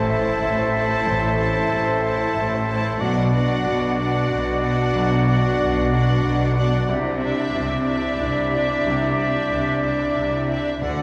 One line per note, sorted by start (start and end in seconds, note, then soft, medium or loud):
0.00 0.33 A1 medium
0.00 1.03 A1 medium
0.00 0.34 A2 medium
0.00 2.96 C4 medium
0.00 2.97 E4 medium
0.00 0.74 A4 medium
0.00 2.97 A4 medium
0.00 0.26 C5 medium
0.00 3.02 C5 medium
0.00 0.10 E5 medium
0.00 3.02 E5 medium
0.08 0.72 E4 medium
0.08 0.72 C5 medium
0.08 0.35 E5 medium
0.08 0.73 A5 medium
0.26 0.51 C5 medium
0.42 0.99 A1 medium
0.42 0.99 A2 medium
0.42 0.67 E5 medium
0.58 0.84 C5 medium
0.73 1.37 E4 medium
0.73 1.00 A4 medium
0.73 1.37 C5 medium
0.73 1.38 A5 medium
0.90 1.16 C5 medium
1.06 1.63 A1 medium
1.06 2.96 A1 medium
1.06 1.63 A2 medium
1.22 1.48 A4 medium
1.38 2.01 E4 medium
1.38 2.01 C5 medium
1.38 1.64 E5 medium
1.38 2.02 A5 medium
1.54 1.80 C5 medium
1.70 2.28 A1 medium
1.70 2.28 A2 medium
1.70 1.96 A4 medium
1.86 2.12 C5 medium
2.03 2.67 E4 medium
2.03 2.67 C5 medium
2.03 2.29 E5 medium
2.03 2.67 A5 medium
2.18 2.45 C5 medium
2.34 2.92 A1 medium
2.34 2.93 A2 medium
2.34 2.61 E5 medium
2.50 2.77 C5 medium
2.68 3.00 E4 medium
2.68 2.94 A4 medium
2.68 3.00 C5 medium
2.68 3.00 A5 medium
2.85 3.01 C5 medium
3.00 3.57 B1 medium
3.00 4.91 B1 medium
3.00 3.58 B2 medium
3.00 6.73 D4 medium
3.00 3.32 D4 medium
3.00 6.73 F#4 medium
3.00 3.32 D5 medium
3.00 6.89 D5 medium
3.00 6.65 F#5 medium
3.00 3.32 F#5 medium
3.17 3.42 D5 medium
3.32 3.97 D4 medium
3.32 3.58 F#4 medium
3.32 3.97 D5 medium
3.32 3.97 F#5 medium
3.48 3.74 D5 medium
3.64 4.23 B1 medium
3.64 4.23 B2 medium
3.64 3.91 F#4 medium
3.81 4.07 D5 medium
3.98 4.62 D4 medium
3.98 4.24 F#4 medium
3.98 4.61 D5 medium
3.98 4.62 F#5 medium
4.14 4.40 D5 medium
4.30 4.88 B1 medium
4.30 4.88 B2 medium
4.30 4.56 F#4 medium
4.46 4.72 D5 medium
4.62 5.27 D4 medium
4.62 4.88 F#4 medium
4.62 5.26 D5 medium
4.62 5.27 F#5 medium
4.78 5.05 D5 medium
4.95 6.85 B1 medium
4.95 5.53 B1 medium
4.95 5.52 B2 medium
5.13 5.38 F#4 medium
5.28 5.91 D4 medium
5.28 5.91 D5 medium
5.28 5.54 D5 medium
5.28 5.91 F#5 medium
5.44 5.69 F#4 medium
5.60 6.17 B1 medium
5.60 6.16 B2 medium
5.60 5.86 D4 medium
5.76 6.02 D5 medium
5.92 6.55 D4 medium
5.92 6.18 F#4 medium
5.92 6.56 D5 medium
5.92 6.55 F#5 medium
6.09 6.34 D5 medium
6.24 6.81 B1 medium
6.24 6.81 B2 medium
6.24 6.50 F#4 medium
6.41 6.67 D5 medium
6.57 6.89 D4 medium
6.57 6.83 F#4 medium
6.57 6.89 D5 medium
6.57 6.89 F#5 medium
6.74 6.89 D5 medium
6.88 8.81 C2 medium
6.88 7.47 C2 medium
6.88 7.46 C3 medium
6.88 10.78 D4 medium
6.88 10.78 E4 medium
6.88 10.77 G4 medium
6.88 10.66 D5 medium
6.88 10.84 E5 medium
7.05 7.31 D5 medium
7.22 7.86 D4 medium
7.22 7.48 E4 medium
7.22 7.85 D5 medium
7.22 7.86 E5 medium
7.39 7.64 D5 medium
7.54 8.12 C2 medium
7.54 8.12 C3 medium
7.54 7.80 E4 medium
7.72 7.97 D5 medium
7.86 8.51 D4 medium
7.86 8.13 E4 medium
7.86 8.50 D5 medium
7.86 8.51 E5 medium
8.04 8.30 D5 medium
8.19 8.78 C2 medium
8.19 8.77 C3 medium
8.19 8.46 E4 medium
8.36 8.62 D5 medium
8.52 9.17 D4 medium
8.52 8.78 E4 medium
8.52 9.16 D5 medium
8.52 9.16 E5 medium
8.70 8.95 D5 medium
8.84 9.43 C2 medium
8.84 10.78 C2 medium
8.84 9.42 C3 medium
9.02 9.28 E4 medium
9.18 9.82 D4 medium
9.18 9.82 D5 medium
9.18 9.44 D5 medium
9.18 9.82 E5 medium
9.34 9.60 E4 medium
9.51 10.08 C2 medium
9.51 10.08 C3 medium
9.51 9.77 D4 medium
9.66 9.92 D5 medium
9.82 10.47 D4 medium
9.82 10.09 E4 medium
9.82 10.48 D5 medium
9.82 10.47 E5 medium
9.99 10.25 D5 soft
10.15 10.73 C2 medium
10.15 10.74 C3 medium
10.15 10.42 E4 medium
10.31 10.58 D5 medium
10.48 10.80 D4 medium
10.48 10.74 E4 soft
10.48 10.81 D5 medium
10.48 10.81 E5 medium
10.65 10.81 D5 soft
10.81 11.03 D2 medium
10.81 11.03 D3 medium
10.81 11.03 D4 medium
10.81 11.03 D4 soft
10.81 11.03 F#4 medium
10.81 11.03 A4 medium
10.81 11.03 D5 soft
10.81 11.03 D5 medium
10.81 11.03 F#5 medium
10.98 11.03 D5 soft